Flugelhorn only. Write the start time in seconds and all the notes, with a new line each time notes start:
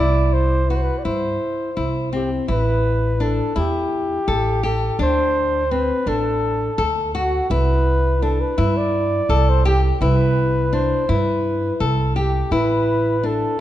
0.00 D5
0.33 C5
0.69 B4
0.76 C5
0.82 B4
0.98 D5
1.04 C5
2.15 G4
2.50 B4
3.22 A4
3.58 G4
4.65 A4
5.01 C5
5.71 B4
6.08 A4
7.16 F#4
7.52 B4
8.23 A4
8.40 B4
8.77 D5
9.49 C5
9.67 G4
10.02 B4
10.75 C5
11.11 B4
12.18 G4
12.53 B4
13.26 A4